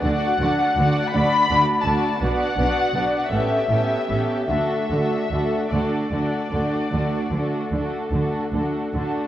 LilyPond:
<<
  \new Staff \with { instrumentName = "Violin section" } { \time 12/8 \key d \major \tempo 4. = 50 fis''4. b''4 a''8 fis''4. e''4. | e''4. d''2. r4. | }
  \new Staff \with { instrumentName = "Violin section" } { \time 12/8 \key d \major <fis' d''>8 <fis' d''>8 <fis' d''>8 <fis' d''>8 <fis' d''>8 <fis' d''>8 <fis' d''>8 <fis' d''>8 <fis' d''>8 <g' a'>8 <g' a'>8 <g' a'>8 | <fis' a'>8 <fis' a'>8 <fis' a'>8 <fis' a'>8 <fis' a'>8 <fis' a'>8 <fis' a'>8 <fis' a'>8 <fis' a'>8 <fis' a'>8 <fis' a'>8 <fis' a'>8 | }
  \new Staff \with { instrumentName = "Viola section" } { \time 12/8 \key d \major <a d'>8 <a d'>8 <a d'>8 <a d'>8 <a d'>8 <a d'>8 <b d'>8 <b d'>8 <b d'>8 <b cis'>8 <b cis'>8 <b cis'>8 | <a d'>8 <a d'>8 <a d'>8 <a d'>8 <a d'>8 <a d'>8 <a d'>8 <a d'>8 <a d'>8 <a d'>8 <a d'>8 <a d'>8 | }
  \new Staff \with { instrumentName = "Cello section" } { \clef bass \time 12/8 \key d \major d8 d8 d8 d8 d8 d8 b,8 b,8 b,8 a,8 a,8 a,8 | d8 d8 d8 d8 d8 d8 d8 d8 d8 d8 d8 d8 | }
  \new Staff \with { instrumentName = "Double bass section" } { \clef bass \time 12/8 \key d \major d,8 d,8 d,8 d,8 d,8 d,8 b,,8 b,,8 b,,8 a,,8 a,,8 a,,8 | d,8 d,8 d,8 d,8 d,8 d,8 d,8 d,8 d,8 d,8 d,8 d,8 | }
>>